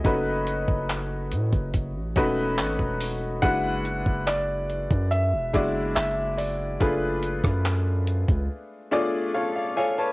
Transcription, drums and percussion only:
0.05 kick, closed hi-hat
0.47 closed hi-hat
0.68 kick
0.89 clap, closed hi-hat
1.31 closed hi-hat
1.53 kick, closed hi-hat
1.74 kick, closed hi-hat
2.16 kick, closed hi-hat
2.58 clap, closed hi-hat
2.79 kick
3.01 open hi-hat
3.43 kick, closed hi-hat
3.85 closed hi-hat
4.06 kick
4.27 clap, closed hi-hat
4.70 closed hi-hat
4.90 kick, closed hi-hat
5.12 closed hi-hat
5.54 kick, closed hi-hat
5.96 clap, closed hi-hat
6.38 open hi-hat
6.80 kick, closed hi-hat
7.23 closed hi-hat
7.44 kick, cross-stick
7.65 clap, closed hi-hat
8.07 closed hi-hat, open hi-hat
8.28 kick, closed hi-hat

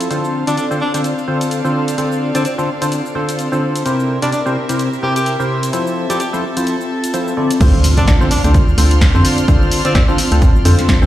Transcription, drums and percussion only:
0.01 closed hi-hat, shaker
0.11 closed hi-hat, shaker
0.25 shaker
0.47 closed hi-hat, shaker
0.57 closed hi-hat, shaker
0.71 shaker
0.94 closed hi-hat, shaker
1.04 closed hi-hat, shaker
1.18 shaker
1.41 closed hi-hat, shaker
1.51 closed hi-hat, shaker
1.65 shaker
1.88 closed hi-hat, shaker
1.98 closed hi-hat, shaker
2.12 shaker
2.35 closed hi-hat, shaker
2.45 closed hi-hat, shaker
2.59 shaker
2.82 closed hi-hat, shaker
2.92 closed hi-hat, shaker
3.06 shaker
3.29 closed hi-hat, shaker
3.39 closed hi-hat, shaker
3.53 shaker
3.76 closed hi-hat, shaker
3.86 closed hi-hat, shaker
4.00 shaker
4.22 closed hi-hat, shaker
4.32 closed hi-hat, shaker
4.46 shaker
4.69 closed hi-hat, shaker
4.79 closed hi-hat, shaker
4.93 shaker
5.16 closed hi-hat, shaker
5.26 closed hi-hat, shaker
5.40 shaker
5.63 closed hi-hat, shaker
5.73 closed hi-hat, shaker
5.87 shaker
6.10 closed hi-hat, shaker
6.20 closed hi-hat, shaker
6.34 shaker
6.57 closed hi-hat, shaker
6.67 closed hi-hat, shaker
6.81 shaker
7.04 closed hi-hat, shaker
7.14 closed hi-hat, shaker
7.28 shaker
7.51 closed hi-hat, shaker
7.61 kick, closed hi-hat, crash, shaker
7.75 shaker
7.84 open hi-hat, shaker
7.97 kick, closed hi-hat, shaker
8.07 kick, snare, closed hi-hat, shaker
8.21 shaker
8.31 open hi-hat, shaker
8.44 closed hi-hat, shaker
8.54 kick, closed hi-hat, shaker
8.68 shaker
8.78 open hi-hat, shaker
8.91 closed hi-hat, shaker
9.01 kick, snare, open hi-hat, shaker
9.15 shaker
9.25 open hi-hat, shaker
9.38 closed hi-hat, shaker
9.48 kick, closed hi-hat, shaker
9.62 shaker
9.72 open hi-hat, shaker
9.85 closed hi-hat, shaker
9.95 kick, snare, closed hi-hat, shaker
10.09 shaker
10.18 open hi-hat, shaker
10.32 closed hi-hat, shaker
10.42 kick, closed hi-hat, shaker
10.56 shaker
10.65 open hi-hat, shaker
10.79 snare, closed hi-hat, shaker
10.89 kick, snare, closed hi-hat, shaker
11.03 shaker

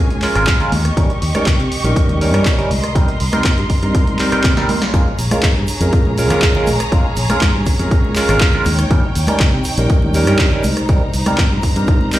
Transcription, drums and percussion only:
0.10 closed hi-hat, high conga, shaker
0.22 clap, open hi-hat
0.35 cross-stick, closed hi-hat, shaker
0.47 kick, clap, closed hi-hat
0.59 closed hi-hat, low conga, shaker
0.72 open hi-hat, high conga
0.85 cross-stick, closed hi-hat, shaker
0.97 kick, closed hi-hat
1.10 closed hi-hat, shaker
1.22 open hi-hat
1.34 cross-stick, closed hi-hat, high conga, shaker
1.46 kick, clap, closed hi-hat
1.60 closed hi-hat, shaker
1.72 open hi-hat
1.85 closed hi-hat, shaker
1.96 kick, closed hi-hat
2.08 closed hi-hat, high conga, shaker
2.21 open hi-hat
2.33 cross-stick, closed hi-hat, shaker
2.45 kick, clap, closed hi-hat
2.58 closed hi-hat, low conga, shaker
2.70 open hi-hat, high conga
2.83 cross-stick, closed hi-hat, shaker
2.95 kick, closed hi-hat
3.08 closed hi-hat, shaker
3.20 open hi-hat
3.32 cross-stick, closed hi-hat, high conga, shaker
3.44 kick, clap, closed hi-hat, shaker
3.57 closed hi-hat, shaker
3.70 kick, open hi-hat
3.83 closed hi-hat
3.95 kick, closed hi-hat
4.07 closed hi-hat, high conga, shaker
4.19 clap, open hi-hat
4.32 cross-stick, closed hi-hat, shaker
4.44 kick, clap, closed hi-hat
4.57 snare, closed hi-hat, low conga, shaker
4.69 open hi-hat, high conga
4.81 snare, closed hi-hat, shaker
4.94 kick, closed hi-hat, shaker
5.19 open hi-hat, shaker
5.31 cross-stick, closed hi-hat, high conga, shaker
5.43 kick, clap, closed hi-hat, shaker
5.67 open hi-hat, shaker
5.81 closed hi-hat, shaker
5.93 kick, closed hi-hat, shaker
6.05 high conga
6.18 open hi-hat, shaker
6.30 cross-stick, closed hi-hat, shaker
6.42 kick, clap, closed hi-hat, shaker
6.55 low conga
6.67 open hi-hat, high conga, shaker
6.80 cross-stick, closed hi-hat, shaker
6.92 kick, closed hi-hat, shaker
7.16 open hi-hat, shaker
7.30 cross-stick, closed hi-hat, high conga, shaker
7.41 kick, clap, closed hi-hat, shaker
7.66 kick, open hi-hat, shaker
7.79 closed hi-hat, shaker
7.91 kick, closed hi-hat, shaker
8.04 high conga
8.16 clap, open hi-hat, shaker
8.29 cross-stick, closed hi-hat, shaker
8.41 kick, clap, closed hi-hat
8.53 low conga
8.65 open hi-hat, high conga, shaker
8.78 cross-stick, closed hi-hat, shaker
8.90 kick, closed hi-hat, shaker
9.15 open hi-hat, shaker
9.27 cross-stick, closed hi-hat, high conga, shaker
9.40 kick, clap, closed hi-hat, shaker
9.64 open hi-hat, shaker
9.77 closed hi-hat, shaker
9.89 kick, closed hi-hat, shaker
10.02 high conga
10.14 open hi-hat, shaker
10.26 cross-stick, closed hi-hat, shaker
10.39 kick, clap, closed hi-hat, shaker
10.52 low conga
10.64 open hi-hat, high conga, shaker
10.77 cross-stick, closed hi-hat, shaker
10.88 kick, closed hi-hat, shaker
11.14 open hi-hat, shaker
11.26 cross-stick, closed hi-hat, high conga, shaker
11.38 kick, clap, closed hi-hat, shaker
11.63 kick, open hi-hat, shaker
11.76 closed hi-hat, shaker
11.87 kick, closed hi-hat, shaker
12.01 high conga
12.12 clap, open hi-hat, shaker

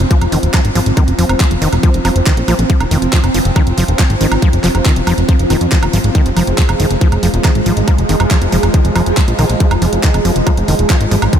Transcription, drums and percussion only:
0.11 kick, closed hi-hat
0.21 closed hi-hat, high woodblock
0.32 open hi-hat
0.43 closed hi-hat
0.54 kick, clap, closed hi-hat, high woodblock
0.65 closed hi-hat
0.75 open hi-hat
0.86 closed hi-hat
0.97 kick, closed hi-hat, high woodblock
1.08 closed hi-hat
1.19 open hi-hat
1.29 closed hi-hat, high woodblock
1.40 kick, clap, closed hi-hat
1.51 closed hi-hat
1.62 open hi-hat
1.73 closed hi-hat, high woodblock
1.83 kick, closed hi-hat
1.94 closed hi-hat
2.05 open hi-hat, high woodblock
2.16 closed hi-hat
2.27 kick, clap, closed hi-hat
2.37 closed hi-hat
2.48 open hi-hat, high woodblock
2.59 closed hi-hat
2.70 kick, closed hi-hat
2.80 closed hi-hat, high woodblock
2.91 open hi-hat
3.02 closed hi-hat
3.13 kick, clap, closed hi-hat
3.24 closed hi-hat, high woodblock
3.34 open hi-hat
3.45 closed hi-hat
3.56 kick, closed hi-hat, high woodblock
3.67 closed hi-hat
3.78 open hi-hat
3.88 closed hi-hat
3.99 kick, clap, closed hi-hat, high woodblock
4.10 closed hi-hat
4.21 open hi-hat
4.32 closed hi-hat, high woodblock
4.42 kick, closed hi-hat
4.53 closed hi-hat
4.64 clap, open hi-hat
4.75 closed hi-hat, high woodblock
4.85 kick, clap, closed hi-hat
4.96 closed hi-hat
5.07 open hi-hat, high woodblock
5.18 closed hi-hat
5.29 kick, closed hi-hat
5.39 closed hi-hat
5.50 open hi-hat, high woodblock
5.61 closed hi-hat
5.72 kick, clap, closed hi-hat
5.83 closed hi-hat, high woodblock
5.93 open hi-hat
6.04 closed hi-hat
6.15 kick, closed hi-hat
6.26 closed hi-hat
6.37 open hi-hat, high woodblock
6.47 closed hi-hat
6.58 kick, clap, closed hi-hat
6.69 closed hi-hat, high woodblock
6.80 open hi-hat
6.91 closed hi-hat
7.01 kick, closed hi-hat
7.12 closed hi-hat, high woodblock
7.23 open hi-hat
7.34 closed hi-hat
7.44 kick, clap, closed hi-hat, high woodblock
7.55 closed hi-hat
7.66 open hi-hat
7.77 closed hi-hat
7.88 kick, closed hi-hat, high woodblock
7.98 closed hi-hat
8.09 open hi-hat
8.20 closed hi-hat, high woodblock
8.31 kick, clap, closed hi-hat
8.42 closed hi-hat
8.52 open hi-hat
8.63 closed hi-hat, high woodblock
8.74 kick, closed hi-hat
8.85 closed hi-hat
8.96 open hi-hat, high woodblock
9.06 closed hi-hat
9.17 kick, clap, closed hi-hat
9.28 closed hi-hat
9.39 open hi-hat, high woodblock
9.50 closed hi-hat
9.60 kick, closed hi-hat
9.71 closed hi-hat, high woodblock
9.82 open hi-hat
9.93 closed hi-hat
10.03 kick, clap, closed hi-hat
10.14 closed hi-hat, high woodblock
10.25 open hi-hat
10.36 closed hi-hat
10.47 kick, closed hi-hat, high woodblock
10.57 closed hi-hat
10.68 open hi-hat
10.79 closed hi-hat
10.90 kick, clap, closed hi-hat, high woodblock
11.01 closed hi-hat
11.11 open hi-hat
11.22 closed hi-hat, high woodblock
11.33 kick, closed hi-hat

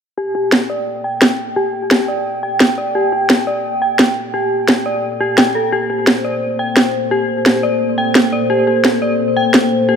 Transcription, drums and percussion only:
0.52 snare
1.22 snare
1.91 snare
2.60 snare
3.30 snare
3.99 snare
4.68 snare
5.38 snare
6.07 snare
6.77 snare
7.46 snare
8.15 snare
8.85 snare
9.54 snare

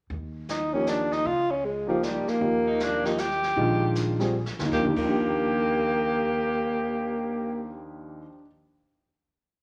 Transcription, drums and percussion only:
0.10 brush sweep, kick
0.49 snare, hi-hat pedal
0.87 snare, hi-hat pedal
1.12 snare
1.26 brush sweep, kick
2.03 snare, hi-hat pedal
2.27 snare
2.41 brush sweep, kick
2.80 snare, hi-hat pedal
3.05 snare
3.18 snare, hi-hat pedal
3.31 snare
3.43 snare
3.45 snare
3.57 brush sweep, kick
3.95 snare, hi-hat pedal
4.20 snare
4.46 snare
4.59 snare
4.72 kick, snare
4.97 kick, crash

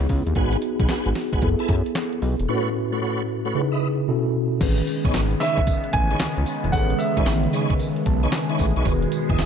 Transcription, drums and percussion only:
0.09 kick, open hi-hat
0.27 closed hi-hat
0.35 kick, closed hi-hat
0.53 closed hi-hat
0.62 closed hi-hat
0.80 kick, closed hi-hat
0.89 snare, clap, closed hi-hat
1.06 closed hi-hat
1.15 snare, open hi-hat
1.33 kick, closed hi-hat
1.42 kick, closed hi-hat
1.59 closed hi-hat
1.69 kick, closed hi-hat
1.86 closed hi-hat
1.95 snare, clap, closed hi-hat
2.12 closed hi-hat
2.22 open hi-hat
2.40 closed hi-hat
4.61 kick, closed hi-hat, crash, tambourine
4.78 closed hi-hat
4.87 closed hi-hat, tambourine
5.05 kick, closed hi-hat
5.14 snare, clap, closed hi-hat, tambourine
5.31 closed hi-hat
5.40 snare, open hi-hat, tambourine
5.58 kick, closed hi-hat
5.67 kick, closed hi-hat, tambourine
5.84 closed hi-hat
5.93 kick, closed hi-hat
6.11 closed hi-hat
6.20 snare, clap, closed hi-hat, tambourine
6.37 closed hi-hat
6.46 open hi-hat, tambourine
6.64 closed hi-hat
6.73 kick, closed hi-hat, tambourine
6.90 closed hi-hat
6.99 closed hi-hat, tambourine
7.17 kick, closed hi-hat
7.26 snare, clap, closed hi-hat, tambourine
7.43 closed hi-hat
7.53 open hi-hat, tambourine
7.70 kick, closed hi-hat
7.79 closed hi-hat, tambourine
7.96 closed hi-hat
8.06 kick, closed hi-hat
8.23 closed hi-hat
8.32 snare, clap, closed hi-hat, tambourine
8.49 closed hi-hat
8.59 kick, open hi-hat, tambourine
8.76 closed hi-hat
8.86 kick, closed hi-hat, tambourine
9.02 closed hi-hat
9.12 closed hi-hat, tambourine
9.29 kick, closed hi-hat
9.38 snare, clap, closed hi-hat, tambourine

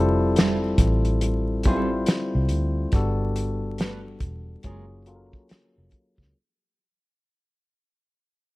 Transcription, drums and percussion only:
0.36 snare, closed hi-hat
0.78 kick, closed hi-hat
1.05 closed hi-hat
1.21 closed hi-hat
1.63 kick, closed hi-hat
2.06 snare, closed hi-hat
2.49 closed hi-hat
2.92 kick, closed hi-hat
3.36 closed hi-hat
3.78 snare, closed hi-hat
4.20 kick, closed hi-hat
4.63 kick, closed hi-hat
5.06 closed hi-hat
5.33 kick
5.49 snare, closed hi-hat
5.91 kick, closed hi-hat
6.18 kick, snare

